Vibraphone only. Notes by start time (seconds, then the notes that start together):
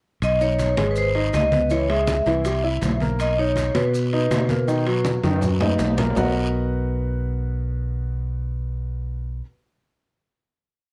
0.23 D#5
0.42 C#5
0.91 B4
0.98 C5
1.35 D#5
1.71 C#5
1.90 E5
3.21 D#5
3.39 C#5
3.76 B4